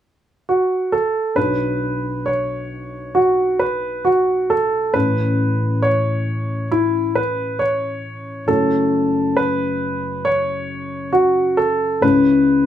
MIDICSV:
0, 0, Header, 1, 3, 480
1, 0, Start_track
1, 0, Tempo, 894188
1, 730, Time_signature, 4, 2, 24, 8
1, 2653, Tempo, 884956
1, 6839, End_track
2, 0, Start_track
2, 0, Title_t, "Grand piano"
2, 0, Program_c, 0, 0
2, 262, Note_on_c, 0, 66, 49
2, 496, Note_on_c, 0, 69, 52
2, 502, Note_off_c, 0, 66, 0
2, 730, Note_on_c, 0, 71, 53
2, 739, Note_off_c, 0, 69, 0
2, 1212, Note_on_c, 0, 73, 53
2, 1227, Note_off_c, 0, 71, 0
2, 1689, Note_on_c, 0, 66, 52
2, 1709, Note_off_c, 0, 73, 0
2, 1929, Note_on_c, 0, 71, 52
2, 1940, Note_off_c, 0, 66, 0
2, 2172, Note_on_c, 0, 66, 51
2, 2180, Note_off_c, 0, 71, 0
2, 2415, Note_on_c, 0, 69, 53
2, 2421, Note_off_c, 0, 66, 0
2, 2650, Note_on_c, 0, 71, 57
2, 2661, Note_off_c, 0, 69, 0
2, 3132, Note_on_c, 0, 73, 61
2, 3147, Note_off_c, 0, 71, 0
2, 3591, Note_off_c, 0, 73, 0
2, 3614, Note_on_c, 0, 64, 57
2, 3853, Note_on_c, 0, 71, 60
2, 3861, Note_off_c, 0, 64, 0
2, 4090, Note_on_c, 0, 73, 60
2, 4100, Note_off_c, 0, 71, 0
2, 4548, Note_off_c, 0, 73, 0
2, 4570, Note_on_c, 0, 69, 53
2, 5052, Note_on_c, 0, 71, 63
2, 5064, Note_off_c, 0, 69, 0
2, 5531, Note_on_c, 0, 73, 67
2, 5547, Note_off_c, 0, 71, 0
2, 5989, Note_off_c, 0, 73, 0
2, 6007, Note_on_c, 0, 66, 55
2, 6249, Note_on_c, 0, 69, 54
2, 6257, Note_off_c, 0, 66, 0
2, 6493, Note_on_c, 0, 71, 63
2, 6499, Note_off_c, 0, 69, 0
2, 6839, Note_off_c, 0, 71, 0
2, 6839, End_track
3, 0, Start_track
3, 0, Title_t, "Upright piano"
3, 0, Program_c, 1, 0
3, 725, Note_on_c, 1, 59, 33
3, 730, Note_on_c, 1, 62, 29
3, 731, Note_on_c, 1, 47, 36
3, 732, Note_on_c, 1, 35, 34
3, 734, Note_on_c, 1, 66, 30
3, 738, Note_on_c, 1, 73, 39
3, 815, Control_c, 1, 64, 127
3, 2630, Note_off_c, 1, 59, 0
3, 2632, Note_off_c, 1, 62, 0
3, 2633, Note_off_c, 1, 35, 0
3, 2633, Note_off_c, 1, 47, 0
3, 2634, Note_off_c, 1, 66, 0
3, 2636, Note_off_c, 1, 73, 0
3, 2647, Note_on_c, 1, 57, 37
3, 2652, Note_on_c, 1, 61, 33
3, 2654, Note_on_c, 1, 45, 38
3, 2655, Note_on_c, 1, 33, 33
3, 2658, Note_on_c, 1, 64, 35
3, 2660, Note_on_c, 1, 73, 38
3, 2661, Control_c, 1, 64, 0
3, 2764, Control_c, 1, 64, 127
3, 4546, Note_off_c, 1, 57, 0
3, 4549, Note_off_c, 1, 61, 0
3, 4550, Note_off_c, 1, 33, 0
3, 4550, Note_off_c, 1, 45, 0
3, 4552, Note_off_c, 1, 64, 0
3, 4553, Note_off_c, 1, 73, 0
3, 4563, Note_on_c, 1, 57, 41
3, 4569, Note_on_c, 1, 64, 36
3, 4571, Note_on_c, 1, 30, 38
3, 4571, Note_on_c, 1, 42, 36
3, 4573, Note_on_c, 1, 66, 36
3, 4578, Control_c, 1, 64, 0
3, 4578, Note_on_c, 1, 73, 46
3, 4681, Control_c, 1, 64, 127
3, 6467, Note_off_c, 1, 57, 0
3, 6470, Note_off_c, 1, 30, 0
3, 6470, Note_off_c, 1, 64, 0
3, 6471, Note_off_c, 1, 42, 0
3, 6471, Note_off_c, 1, 66, 0
3, 6474, Note_off_c, 1, 73, 0
3, 6488, Note_on_c, 1, 56, 41
3, 6494, Note_on_c, 1, 61, 39
3, 6496, Note_on_c, 1, 37, 43
3, 6496, Note_on_c, 1, 49, 43
3, 6497, Note_on_c, 1, 64, 40
3, 6499, Control_c, 1, 64, 0
3, 6503, Note_on_c, 1, 73, 46
3, 6600, Control_c, 1, 64, 127
3, 6839, Note_off_c, 1, 37, 0
3, 6839, Note_off_c, 1, 49, 0
3, 6839, Note_off_c, 1, 56, 0
3, 6839, Note_off_c, 1, 61, 0
3, 6839, Note_off_c, 1, 64, 0
3, 6839, Note_off_c, 1, 73, 0
3, 6839, End_track
0, 0, End_of_file